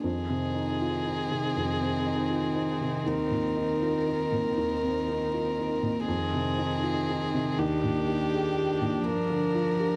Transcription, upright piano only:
0.04 F2
0.29 C3
0.54 D#4
0.81 F4
1.07 D#4
1.31 C3
1.57 F2
1.81 C4
2.07 D#4
2.31 F4
2.56 D#4
2.81 C3
3.06 D#2
3.31 A#2
3.57 D#4
3.82 F4
4.08 D#4
4.32 A#2
4.57 D#2
4.83 C4
5.08 D#4
5.33 F4
5.59 D#4
5.83 A#2
6.08 F2
6.33 C3
6.58 D#4
6.83 F4
7.09 D#4
7.34 C3
7.58 D#2
7.84 A#2
8.08 G4
8.33 G#4
8.58 G4
8.82 A#2
9.06 G2
9.30 D3
9.54 F4
9.80 G4

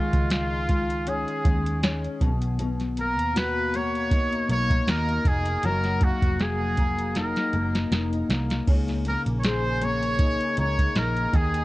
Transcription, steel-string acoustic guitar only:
Already playing: D#3 G#3 D#4
0.69 G#3
1.07 C#4
1.46 G#3
1.83 C#4
2.22 B2
2.59 B2
2.98 A#3
3.36 F#4
3.74 A#3
4.12 D#4
4.50 A#3
4.88 D#4
5.26 A#3
5.64 F#3
6.02 A#3
6.40 G#4
6.78 A#3
7.16 D#4
7.54 A#3
7.92 D#4
8.30 A#3
8.68 C#3
9.06 A#3
9.44 G#4
9.81 A#3
10.20 D#4
10.58 A#3
10.96 D#4
11.33 D#3

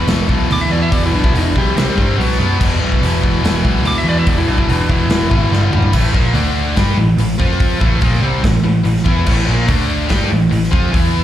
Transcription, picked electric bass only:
0.07 E1
0.29 B1
0.49 D2
0.70 E2
0.92 E1
1.12 B1
1.34 E1
1.56 B1
1.76 C2
1.98 G2
2.18 B1
2.39 F#2
2.61 E1
2.80 B1
3.01 E1
3.24 E1
3.42 E1
3.65 B1
3.82 D2
4.04 E2
4.27 E1
4.47 B1
4.69 E1
4.90 E1
5.09 E1
5.32 G#1
5.51 G1
5.71 G1
5.94 A1
6.15 A#1
6.34 D2
6.77 G2
6.96 A1
7.17 A1
7.39 F2
7.81 A1
8.02 A#1
8.21 C2
8.44 A1
8.62 A1
8.84 A1
9.06 E2
9.27 A1
9.48 A#1
9.69 D2
10.10 G2
10.33 A1
10.52 A1
10.73 F2
10.95 E2

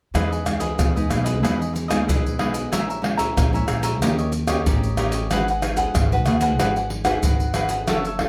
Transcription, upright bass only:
0.15 E2
0.79 E2
1.10 B1
1.43 E2
2.08 B1
2.73 A#1
3.37 A#1
3.68 A#1
4.01 D#2
4.66 A1
5.30 G#1
5.94 G#1
6.26 D#2
6.60 G#1
7.24 G#1
7.89 F#1

